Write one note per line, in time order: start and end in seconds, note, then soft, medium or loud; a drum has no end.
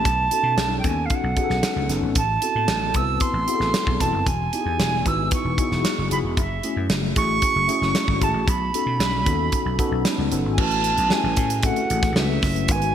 0.00 0.78 A5 medium
0.05 0.27 B1 loud
0.05 kick loud
0.05 closed hi-hat medium
0.31 0.73 B3 medium
0.31 0.73 C#4 medium
0.31 0.73 D#4 medium
0.31 0.73 F#4 medium
0.31 0.74 A4 medium
0.31 closed hi-hat medium
0.43 0.55 B2 medium
0.57 0.79 B1 medium
0.57 snare loud
0.57 closed hi-hat medium
0.79 0.88 G5 medium
0.84 1.06 D#2 medium
0.84 1.26 B3 medium
0.84 1.26 C#4 medium
0.84 1.26 D#4 medium
0.84 1.26 F#4 medium
0.84 1.26 A4 medium
0.84 1.07 G#5 medium
0.84 kick medium
0.84 closed hi-hat medium
1.05 1.16 F5 soft
1.10 kick medium
1.10 closed hi-hat medium
1.14 1.91 F#5 medium
1.24 1.34 B1 medium
1.37 1.78 B3 medium
1.37 1.78 C#4 medium
1.37 1.79 D#4 medium
1.37 1.79 F#4 medium
1.37 1.43 G#4 medium
1.37 kick medium
1.37 closed hi-hat medium
1.44 1.82 A4 medium
1.50 1.61 B1 medium
1.50 snare soft
1.63 snare loud
1.63 closed hi-hat medium
1.76 1.87 C#2 medium
1.89 2.00 F#1 medium
1.89 2.16 B3 medium
1.89 2.16 C#4 medium
1.89 2.16 D#4 medium
1.89 2.16 F#4 medium
1.89 2.16 A4 medium
1.89 snare soft
1.89 closed hi-hat medium
2.02 2.15 G#1 medium
2.15 2.37 A1 medium
2.15 2.97 A5 medium
2.15 kick loud
2.15 closed hi-hat medium
2.42 2.84 B3 medium
2.42 2.84 C4 medium
2.42 2.84 E4 medium
2.42 2.84 F#4 medium
2.42 2.84 A4 medium
2.42 closed hi-hat medium
2.55 2.66 A2 medium
2.68 2.90 A1 medium
2.68 snare medium
2.68 closed hi-hat medium
2.94 3.17 C2 medium
2.94 3.37 B3 medium
2.94 3.37 C4 medium
2.94 3.37 E4 medium
2.94 3.37 F#4 medium
2.94 3.38 B4 medium
2.94 3.22 E6 loud
2.94 kick medium
2.94 closed hi-hat medium
3.20 4.02 C6 medium
3.20 kick medium
3.20 closed hi-hat medium
3.33 3.45 A1 medium
3.48 3.89 B3 medium
3.48 3.90 C4 medium
3.48 3.90 E4 medium
3.48 3.90 F#4 medium
3.48 3.54 G#4 medium
3.48 closed hi-hat medium
3.55 3.93 A4 medium
3.60 3.71 A1 medium
3.60 snare soft
3.74 snare loud
3.74 closed hi-hat medium
3.87 3.98 B1 medium
3.87 kick medium
4.00 4.12 E1 medium
4.00 4.26 B3 medium
4.00 4.26 C4 medium
4.00 4.27 E4 medium
4.00 4.27 F#4 medium
4.00 4.27 A4 medium
4.00 4.28 A5 medium
4.00 kick medium
4.00 snare soft
4.00 closed hi-hat medium
4.12 4.24 F#1 medium
4.26 4.48 E1 loud
4.26 5.09 G#5 medium
4.26 kick loud
4.26 closed hi-hat medium
4.53 4.95 B3 medium
4.53 4.95 D#4 medium
4.53 4.95 E4 medium
4.53 4.95 F#4 medium
4.53 4.60 G4 medium
4.53 closed hi-hat medium
4.61 4.98 G#4 medium
4.66 4.77 E2 medium
4.79 5.01 E1 medium
4.79 snare loud
4.79 closed hi-hat medium
5.05 5.27 G#1 medium
5.05 5.47 B3 medium
5.05 5.47 D#4 medium
5.05 5.47 E4 medium
5.05 5.48 F#4 medium
5.05 5.48 B4 medium
5.05 5.32 E6 medium
5.05 kick medium
5.05 closed hi-hat medium
5.31 6.08 C#6 medium
5.31 kick medium
5.31 closed hi-hat medium
5.45 5.56 E1 medium
5.57 5.99 B3 medium
5.57 6.00 D#4 medium
5.57 6.00 E4 medium
5.57 6.00 F#4 medium
5.57 6.00 G#4 medium
5.57 kick medium
5.57 closed hi-hat medium
5.71 5.82 E1 medium
5.71 snare soft
5.85 snare loud
5.85 closed hi-hat medium
5.98 6.09 F#1 medium
6.10 6.22 F#1 medium
6.10 6.37 B3 medium
6.10 6.37 D#4 medium
6.10 6.37 E4 medium
6.10 6.37 F#4 medium
6.10 6.38 G#4 medium
6.10 6.18 B5 medium
6.10 closed hi-hat medium
6.24 6.37 E1 medium
6.37 6.59 F#1 medium
6.37 6.86 E5 medium
6.37 kick loud
6.37 closed hi-hat medium
6.63 7.05 A3 medium
6.63 7.05 C#4 medium
6.63 7.05 E4 medium
6.63 7.06 F#4 medium
6.63 7.06 G#4 medium
6.63 closed hi-hat medium
6.76 6.87 F#2 medium
6.90 7.12 F#1 medium
6.90 snare loud
6.90 closed hi-hat medium
7.16 7.38 A1 medium
7.16 7.58 A3 medium
7.16 7.58 C#4 medium
7.16 7.58 E4 medium
7.16 7.58 F#4 medium
7.16 7.58 G#4 medium
7.16 8.24 C#6 loud
7.16 kick medium
7.16 closed hi-hat medium
7.42 kick medium
7.42 closed hi-hat medium
7.56 7.66 F#1 medium
7.68 8.10 A3 medium
7.68 8.10 C#4 medium
7.68 8.10 E4 medium
7.68 8.11 F#4 medium
7.68 8.11 G#4 medium
7.68 closed hi-hat medium
7.81 7.92 F#1 medium
7.81 snare soft
7.95 snare loud
7.95 closed hi-hat medium
8.08 8.19 G#1 medium
8.08 kick medium
8.21 8.32 G#1 medium
8.21 8.47 A3 medium
8.21 8.47 C#4 medium
8.21 8.48 E4 medium
8.21 8.48 F#4 medium
8.21 8.48 G#4 medium
8.21 8.50 A5 medium
8.21 kick medium
8.21 closed hi-hat medium
8.33 8.45 A1 medium
8.47 8.69 B1 loud
8.47 10.06 B5 medium
8.47 kick loud
8.47 closed hi-hat medium
8.74 9.16 B3 medium
8.74 9.16 C#4 medium
8.74 9.16 D#4 medium
8.74 9.16 F#4 medium
8.74 9.16 A4 medium
8.74 closed hi-hat medium
8.86 8.98 B2 medium
8.99 9.26 B1 medium
8.99 snare loud
8.99 closed hi-hat medium
9.26 9.48 D#2 medium
9.26 9.68 B3 medium
9.26 9.68 C#4 medium
9.26 9.68 D#4 medium
9.26 9.68 F#4 medium
9.26 9.68 A4 medium
9.26 kick medium
9.26 closed hi-hat medium
9.52 kick medium
9.52 closed hi-hat medium
9.66 9.77 B1 medium
9.78 10.21 B3 medium
9.78 10.21 C#4 medium
9.78 10.21 D#4 medium
9.78 10.21 F#4 medium
9.78 10.21 A4 loud
9.78 kick medium
9.78 closed hi-hat medium
9.91 10.03 B1 medium
10.05 snare loud
10.05 closed hi-hat medium
10.18 10.29 C#2 medium
10.31 10.46 F#1 medium
10.31 10.58 B3 medium
10.31 10.57 C#4 medium
10.31 10.58 D#4 medium
10.31 10.58 F#4 medium
10.31 10.58 A4 medium
10.31 closed hi-hat medium
10.46 10.56 G#1 medium
10.52 10.61 G#5 medium
10.58 10.91 A1 medium
10.58 11.00 A3 medium
10.58 11.00 C#4 medium
10.58 11.00 E4 medium
10.58 11.00 F#4 medium
10.58 11.00 B4 medium
10.58 11.13 A5 medium
10.58 kick loud
10.58 crash medium
10.71 closed hi-hat soft
10.84 closed hi-hat medium
10.98 11.09 B1 medium
10.98 closed hi-hat soft
11.10 11.52 A3 medium
11.10 11.53 C#4 medium
11.10 11.53 E4 medium
11.10 11.53 F#4 medium
11.10 11.17 G4 medium
11.10 11.67 G#5 medium
11.10 snare medium
11.18 11.56 G#4 medium
11.24 11.35 A1 medium
11.37 11.70 A2 medium
11.37 kick medium
11.37 closed hi-hat medium
11.50 closed hi-hat soft
11.63 12.05 A3 medium
11.63 11.69 C4 soft
11.63 12.05 E4 medium
11.63 12.06 F#4 medium
11.63 12.06 A4 medium
11.63 12.17 F#5 medium
11.63 kick medium
11.63 closed hi-hat medium
11.69 12.08 C#4 medium
11.76 closed hi-hat soft
11.90 12.12 A1 medium
11.90 closed hi-hat medium
12.03 kick medium
12.03 snare soft
12.03 closed hi-hat soft
12.15 12.38 C#2 medium
12.15 12.57 A3 medium
12.15 12.57 C#4 medium
12.15 12.58 E4 medium
12.15 12.58 F#4 medium
12.15 12.58 B4 medium
12.15 12.73 E5 medium
12.15 snare loud
12.42 12.69 F#1 medium
12.42 kick medium
12.42 snare soft
12.42 open hi-hat medium
12.56 closed hi-hat soft
12.68 12.95 G#1 loud
12.68 12.95 G#3 medium
12.68 12.95 B3 medium
12.68 12.95 D#4 medium
12.68 12.95 F#4 medium
12.68 12.75 A#4 medium
12.68 12.95 G#5 loud
12.68 kick loud
12.68 closed hi-hat medium
12.75 12.95 B4 medium
12.82 closed hi-hat soft